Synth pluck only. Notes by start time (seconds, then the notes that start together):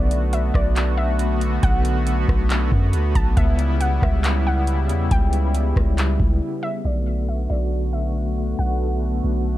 Already playing: D5
0.33 E5
0.54 D5
0.97 E5
1.63 F#5
3.15 A5
3.37 E5
3.80 F#5
4.03 E5
4.47 F#5
5.11 G5
6.63 E5
6.85 D5
7.28 E5
7.50 D5
7.93 E5
8.59 F#5